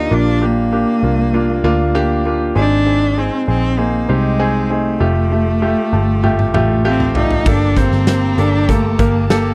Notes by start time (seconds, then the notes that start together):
Already playing: A#3 D4 D#4 F4 G4
0.11 A#1 A#2 A#3 D4 F4
0.41 A#3 D4 G4
0.72 A#3 D4 G4
1.03 C2 A#3 D4 F4
1.34 A#3 D4 F4
1.64 D2 A#3 D4 F4
1.95 A#3 D4 G4
2.25 A#3 D4 F4
2.55 G#1 G#2 C4 D4 D#4 G#4
2.86 C4 D#4 G#4
3.17 C4 D#4 G#4
3.48 A#1 C4 D#4 G#4
3.78 A#3 C4 D#4 G#4
4.09 C2 G#3 C4 D#4 G4
4.39 C4 D#4 G#4
4.70 A3 C4 D#4 G#4
5.00 F1 A3 F4 G4
5.31 A3 F4 G4
5.62 A3 F4 G4
5.92 G1 A3 F4 G4 A5
6.23 A3 F4 G4 G5, high tom
6.39 G5, high tom
6.54 A1 A3 F4 G4, mid tom
6.70 F5
6.84 A3 C4 F4 G4 F5
7.00 mid tom
7.15 A3 D#4 F4 G4 D5, floor tom
7.31 floor tom
7.46 G1 G2 A#3 D4 G4 A4 G5 A5 A#5, kick, crash
7.77 A#3 C4 G4 C5, kick, closed hi-hat
7.92 G1, snare
8.07 A#3 G4 C5, snare, closed hi-hat
8.38 G1 A#3 D4 G4 A4, closed hi-hat
8.69 A3 A#3 G4 A4, kick, closed hi-hat
8.99 G1 A#3 G4 A#4, kick, closed hi-hat
9.30 A#3 G4 A4, snare, closed hi-hat